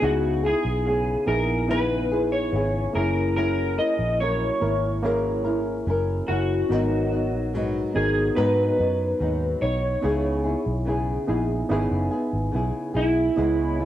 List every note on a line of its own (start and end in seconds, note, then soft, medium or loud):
0.01 0.52 C#2 medium
0.01 0.44 C#3 medium
0.01 1.17 B3 medium
0.01 0.44 B3 medium
0.01 1.18 D#4 medium
0.01 1.18 E4 medium
0.01 0.44 E4 medium
0.01 0.46 F#4 medium
0.01 1.19 G#4 medium
0.01 0.42 G#4 medium
0.43 0.85 B3 soft
0.43 0.87 E4 soft
0.43 0.86 G#4 soft
0.43 1.27 G#4 medium
0.65 1.15 B1 medium
0.85 1.27 C#3 medium
0.85 1.28 B3 medium
0.85 1.28 E4 medium
0.85 1.26 G#4 medium
1.26 2.49 A#1 medium
1.26 1.66 B3 medium
1.26 1.66 D#4 medium
1.26 1.66 E4 medium
1.26 1.70 E4 soft
1.26 1.69 G#4 medium
1.26 1.67 G#4 medium
1.26 1.70 A#4 medium
1.31 1.69 B3 soft
1.68 2.11 C#3 medium
1.68 2.94 B3 medium
1.68 2.12 B3 medium
1.68 2.94 D#4 medium
1.68 2.94 E4 medium
1.68 2.12 E4 medium
1.68 2.10 G#4 medium
1.68 2.95 B4 medium
1.68 2.32 B4 loud
2.11 2.52 B3 soft
2.11 2.53 E4 medium
2.11 2.53 G#4 soft
2.32 2.95 C#5 medium
2.52 2.86 G#1 medium
2.52 2.94 C#3 medium
2.52 2.95 B3 medium
2.52 2.95 E4 medium
2.52 2.94 G#4 medium
2.93 3.78 F#1 medium
2.93 4.48 A#3 medium
2.93 4.49 C#4 medium
2.93 4.49 E4 medium
2.93 3.37 E4 medium
2.93 4.50 G#4 medium
2.93 3.36 A#4 medium
2.93 3.35 A#4 medium
2.98 3.36 C#4 soft
3.36 3.78 F#3 medium
3.36 3.78 C#4 medium
3.36 3.79 E4 medium
3.36 3.75 A#4 medium
3.36 3.76 A#4 medium
3.78 4.20 C#4 soft
3.78 4.21 E4 soft
3.78 4.20 A#4 medium
3.78 4.20 D#5 loud
3.99 4.49 A#1 medium
4.20 4.61 F#3 medium
4.20 4.62 C#4 medium
4.20 4.62 E4 medium
4.20 4.60 A#4 medium
4.20 6.25 C#5 loud
4.60 5.83 G#1 medium
4.60 5.00 A#3 medium
4.60 5.00 C#4 medium
4.60 5.00 E4 medium
4.60 5.03 E4 medium
4.60 5.03 A#4 medium
4.60 5.01 A#4 medium
4.65 5.03 C#4 soft
5.02 5.45 F#3 medium
5.02 6.57 A#3 medium
5.02 6.58 C#4 medium
5.02 5.45 C#4 medium
5.02 6.58 E4 medium
5.02 5.45 E4 medium
5.02 6.58 G#4 medium
5.02 5.43 A#4 medium
5.45 5.87 C#4 soft
5.45 5.87 E4 medium
5.45 5.87 A#4 medium
5.87 6.20 F#1 medium
5.87 6.28 F#3 medium
5.87 6.29 C#4 medium
5.87 6.28 E4 medium
5.87 6.26 A#4 medium
6.27 6.62 F#1 medium
6.27 6.71 C#4 soft
6.27 6.71 E4 soft
6.27 7.95 F#4 medium
6.27 6.70 A#4 medium
6.69 7.33 G#1 medium
6.69 7.12 G#2 medium
6.69 7.12 F#3 medium
6.69 7.85 B3 medium
6.69 7.13 B3 medium
6.69 7.86 D#4 medium
6.69 7.11 D#4 medium
6.69 7.86 F#4 medium
6.69 7.87 A#4 medium
7.12 7.53 F#3 soft
7.12 7.55 B3 soft
7.12 7.54 D#4 medium
7.33 7.83 A#1 medium
7.53 7.95 G#2 medium
7.53 7.96 F#3 medium
7.53 7.95 B3 medium
7.53 7.94 D#4 medium
7.94 8.29 G#1 loud
7.94 8.33 B3 medium
7.94 8.37 B3 soft
7.94 8.34 D#4 medium
7.94 8.37 D#4 medium
7.94 8.34 F#4 medium
7.94 8.34 G#4 medium
7.94 8.34 A#4 medium
7.98 8.36 F#3 soft
8.35 8.78 G#2 medium
8.35 8.71 G#2 medium
8.35 8.79 F#3 medium
8.35 9.90 B3 medium
8.35 8.79 B3 medium
8.35 9.91 D#4 medium
8.35 8.77 D#4 medium
8.35 9.91 F#4 medium
8.35 9.58 B4 medium
8.35 9.92 A#5 medium
8.78 9.13 F#2 medium
8.78 9.19 F#3 soft
8.78 9.20 B3 soft
8.78 9.20 D#4 medium
9.19 9.54 D#2 medium
9.19 9.61 G#2 medium
9.19 9.62 F#3 medium
9.19 9.62 B3 medium
9.19 9.60 D#4 medium
9.61 9.95 B1 medium
9.61 10.05 F#3 soft
9.61 10.02 B3 soft
9.61 10.04 D#4 medium
9.61 12.50 C#5 medium
10.02 10.54 C#2 medium
10.02 10.45 C#3 medium
10.02 11.19 B3 medium
10.02 10.45 B3 medium
10.02 11.19 D#4 medium
10.02 11.19 E4 medium
10.02 10.45 E4 medium
10.02 11.20 G#4 medium
10.02 10.43 G#4 medium
10.44 10.85 B3 soft
10.44 10.87 E4 medium
10.44 10.86 G#4 soft
10.66 11.16 B1 medium
10.85 11.28 C#3 medium
10.85 11.29 B3 medium
10.85 11.28 E4 medium
10.85 11.27 G#4 medium
11.27 11.62 A#1 medium
11.27 11.67 B3 medium
11.27 11.69 B3 soft
11.27 11.67 D#4 medium
11.27 11.67 E4 medium
11.27 11.70 E4 medium
11.27 11.70 G#4 medium
11.27 11.68 G#4 medium
11.69 11.87 G#1 medium
11.69 12.12 C#3 medium
11.69 13.24 B3 medium
11.69 12.12 B3 medium
11.69 13.24 D#4 medium
11.69 13.25 E4 medium
11.69 12.11 E4 medium
11.69 12.09 G#4 medium
11.69 13.25 B4 medium
11.91 12.08 F#1 medium
12.11 12.52 B3 soft
12.11 12.53 E4 soft
12.11 12.53 G#4 medium
12.33 12.50 G#1 medium
12.52 12.71 B1 medium
12.52 12.95 C#3 medium
12.52 12.95 B3 medium
12.52 12.95 E4 medium
12.52 12.93 G#4 medium
12.94 13.29 B1 medium
12.94 13.37 B3 soft
12.94 13.37 E4 medium
12.94 13.85 E4 medium
12.94 13.37 G#4 medium
13.36 13.85 C#2 loud
13.36 13.79 C#3 medium
13.36 13.79 G#3 medium
13.36 13.85 B3 medium
13.36 13.79 B3 medium
13.36 13.85 E4 medium
13.36 13.77 E4 medium
13.36 13.85 G#4 medium
13.36 13.85 C#5 medium
13.36 13.85 D#5 medium
13.36 13.85 G#5 medium
13.36 13.85 B5 medium
13.79 13.85 G#3 soft
13.79 13.85 B3 soft
13.79 13.85 E4 medium